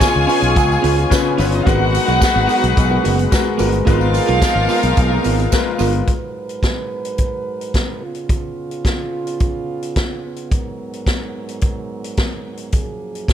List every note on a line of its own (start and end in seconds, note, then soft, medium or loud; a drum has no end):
0.00 1.10 C#3 medium
0.00 1.64 C#3 medium
0.00 1.34 G#3 medium
0.00 1.64 B3 medium
0.00 1.11 C#4 medium
0.00 1.35 C#4 medium
0.00 1.11 F4 medium
0.00 1.34 F4 medium
0.00 1.64 F4 medium
0.00 1.29 G#4 loud
0.00 1.11 B4 loud
0.00 1.35 C#5 loud
0.00 1.29 G#5 loud
0.00 muted clean electric guitar stroke soft
0.00 kick loud
0.00 snare medium
0.00 closed hi-hat medium
0.00 tambourine loud
0.14 0.25 C#2 medium
0.14 muted clean electric guitar stroke soft
0.27 0.47 C#4 medium
0.27 0.41 F4 medium
0.27 0.40 B4 medium
0.27 open hi-hat medium
0.27 tambourine medium
0.41 0.57 B1 medium
0.41 muted clean electric guitar stroke soft
0.41 closed hi-hat medium
0.41 tambourine soft
0.55 0.77 C#2 loud
0.55 muted clean electric guitar stroke soft
0.55 kick loud
0.55 closed hi-hat medium
0.55 tambourine medium
0.69 muted clean electric guitar stroke soft
0.69 tambourine soft
0.82 1.04 C#2 loud
0.82 1.03 C#4 medium
0.82 0.97 F4 medium
0.82 0.96 B4 medium
0.82 open hi-hat medium
0.82 tambourine soft
0.97 muted clean electric guitar stroke soft
0.97 closed hi-hat soft
1.10 1.31 C#3 loud
1.10 1.31 C#4 medium
1.10 1.31 F4 medium
1.10 1.31 B4 loud
1.10 kick loud
1.10 snare loud
1.10 closed hi-hat medium
1.10 tambourine loud
1.25 muted clean electric guitar stroke soft
1.38 1.59 G1 loud
1.38 1.59 C#3 medium
1.38 1.46 B3 medium
1.38 1.58 C#4 medium
1.38 1.59 C#4 medium
1.38 1.52 F4 medium
1.38 1.59 F4 medium
1.38 1.51 B4 medium
1.38 1.46 B4 medium
1.38 1.59 B4 medium
1.38 open hi-hat medium
1.38 tambourine medium
1.45 1.52 C#4 medium
1.45 1.52 C#5 medium
1.52 1.59 D#4 medium
1.52 1.60 D#5 medium
1.52 muted clean electric guitar stroke soft
1.52 closed hi-hat soft
1.61 1.67 F4 medium
1.61 1.67 F5 medium
1.65 1.97 G#1 loud
1.65 3.55 F#3 medium
1.65 2.47 G#3 loud
1.65 5.91 G#3 medium
1.65 1.85 B3 medium
1.65 3.55 B3 medium
1.65 5.91 B3 medium
1.65 3.55 D#4 medium
1.65 1.79 F#4 medium
1.65 3.55 F#4 loud
1.65 2.47 F#4 medium
1.65 3.85 F#4 medium
1.65 5.91 G#4 medium
1.65 2.47 A#4 medium
1.65 1.78 A#4 medium
1.65 3.55 B4 loud
1.65 2.48 B4 loud
1.65 3.55 F#5 loud
1.65 kick loud
1.65 closed hi-hat medium
1.65 tambourine medium
1.79 muted clean electric guitar stroke soft
1.92 muted clean electric guitar stroke soft
1.92 open hi-hat medium
1.92 tambourine medium
2.06 2.18 B1 medium
2.06 2.19 B3 medium
2.06 2.19 F#4 medium
2.06 2.20 A#4 medium
2.06 closed hi-hat soft
2.20 muted clean electric guitar stroke soft
2.20 kick loud
2.20 snare loud
2.20 closed hi-hat medium
2.20 tambourine loud
2.35 2.46 G#1 medium
2.35 muted clean electric guitar stroke soft
2.47 2.68 B3 medium
2.47 2.61 F#4 medium
2.47 2.60 A#4 medium
2.47 open hi-hat medium
2.47 tambourine soft
2.61 2.74 B1 medium
2.61 muted clean electric guitar stroke soft
2.61 closed hi-hat medium
2.76 2.97 B1 loud
2.76 muted clean electric guitar stroke soft
2.76 kick loud
2.76 closed hi-hat medium
2.76 tambourine medium
2.90 3.02 B3 medium
2.90 3.03 F#4 medium
2.90 3.03 A#4 medium
3.03 3.26 F#1 loud
3.03 3.23 B3 medium
3.03 3.17 F#4 medium
3.03 3.16 A#4 medium
3.03 open hi-hat medium
3.03 tambourine medium
3.17 muted clean electric guitar stroke soft
3.17 closed hi-hat soft
3.31 3.52 G#3 medium
3.31 3.52 F#4 medium
3.31 3.52 A#4 medium
3.31 3.52 B4 loud
3.31 kick loud
3.31 snare loud
3.31 closed hi-hat medium
3.31 tambourine loud
3.45 muted clean electric guitar stroke soft
3.58 3.80 G1 loud
3.58 3.79 G#3 medium
3.58 3.78 B3 medium
3.58 3.79 F#4 medium
3.58 3.72 F#4 medium
3.58 3.71 A#4 medium
3.58 3.80 A#4 medium
3.58 3.80 B4 medium
3.58 open hi-hat medium
3.58 tambourine medium
3.72 muted clean electric guitar stroke medium
3.72 closed hi-hat soft
3.85 4.18 G#1 loud
3.85 5.76 F3 medium
3.85 4.68 G#3 loud
3.85 5.76 A#3 medium
3.85 4.06 B3 medium
3.85 5.76 D#4 medium
3.85 4.00 F4 medium
3.85 4.68 F4 medium
3.85 5.91 F4 medium
3.85 5.77 F4 loud
3.85 5.76 A#4 loud
3.85 3.99 A#4 medium
3.85 4.68 A#4 medium
3.85 4.68 B4 loud
3.85 5.77 F5 loud
3.85 kick loud
3.85 closed hi-hat medium
3.85 tambourine medium
4.00 muted clean electric guitar stroke soft
4.00 tambourine soft
4.14 muted clean electric guitar stroke medium
4.14 open hi-hat medium
4.14 tambourine medium
4.26 4.39 B1 medium
4.26 4.39 B3 medium
4.26 4.40 F4 medium
4.26 4.41 A#4 medium
4.26 closed hi-hat soft
4.42 kick loud
4.42 snare medium
4.42 closed hi-hat medium
4.42 tambourine loud
4.55 4.66 G#1 medium
4.55 muted clean electric guitar stroke soft
4.68 4.89 B3 medium
4.68 4.81 F4 medium
4.68 4.80 A#4 loud
4.68 open hi-hat medium
4.68 tambourine medium
4.81 4.94 B1 loud
4.81 muted clean electric guitar stroke soft
4.81 closed hi-hat medium
4.81 tambourine soft
4.95 5.18 B1 loud
4.95 muted clean electric guitar stroke soft
4.95 kick loud
4.95 closed hi-hat medium
4.95 tambourine medium
5.09 5.22 B3 medium
5.09 5.23 F4 medium
5.09 5.24 A#4 medium
5.24 5.46 G#1 loud
5.24 5.44 B3 medium
5.24 5.37 F4 medium
5.24 5.36 A#4 medium
5.24 open hi-hat medium
5.24 tambourine soft
5.38 muted clean electric guitar stroke soft
5.38 closed hi-hat soft
5.51 5.72 G#3 medium
5.51 5.73 F4 medium
5.51 5.73 A#4 medium
5.51 5.73 B4 loud
5.51 kick loud
5.51 snare loud
5.51 closed hi-hat medium
5.51 tambourine loud
5.66 muted clean electric guitar stroke soft
5.79 6.01 G1 medium
5.79 6.00 G#3 medium
5.79 5.99 B3 medium
5.79 5.93 F4 medium
5.79 6.00 F4 medium
5.79 6.01 A#4 medium
5.79 5.92 A#4 medium
5.79 6.01 B4 medium
5.79 open hi-hat medium
5.79 tambourine medium
5.93 muted clean electric guitar stroke soft
5.93 closed hi-hat soft
6.07 8.00 G#2 medium
6.07 8.01 F#3 medium
6.07 8.00 A#4 medium
6.07 8.00 B4 medium
6.07 kick medium
6.07 closed hi-hat medium
6.49 closed hi-hat soft
6.63 kick medium
6.63 snare medium
6.63 closed hi-hat medium
7.05 closed hi-hat soft
7.18 kick medium
7.18 closed hi-hat medium
7.61 closed hi-hat soft
7.74 kick medium
7.74 snare medium
7.74 closed hi-hat medium
8.02 10.50 C#3 medium
8.02 12.70 B3 medium
8.02 10.49 F4 medium
8.15 closed hi-hat soft
8.29 kick loud
8.29 closed hi-hat medium
8.71 closed hi-hat soft
8.85 kick medium
8.85 snare medium
8.85 closed hi-hat medium
9.27 closed hi-hat soft
9.40 kick loud
9.40 closed hi-hat soft
9.83 closed hi-hat soft
9.96 kick medium
9.96 snare medium
9.96 closed hi-hat medium
10.36 closed hi-hat soft
10.51 12.72 G#2 medium
10.51 12.72 F#3 medium
10.51 12.72 A#4 medium
10.51 kick loud
10.51 closed hi-hat medium
10.93 closed hi-hat soft
11.06 kick loud
11.06 snare loud
11.06 closed hi-hat medium
11.49 closed hi-hat soft
11.61 kick loud
11.61 closed hi-hat medium
12.04 closed hi-hat soft
12.17 kick loud
12.17 snare loud
12.17 closed hi-hat medium
12.57 closed hi-hat soft
12.72 13.33 F#2 medium
12.72 13.33 F3 medium
12.72 13.33 A#3 medium
12.72 13.33 G#4 medium
12.72 kick loud
12.72 closed hi-hat medium
13.15 closed hi-hat soft
13.28 kick loud
13.28 snare medium
13.28 closed hi-hat medium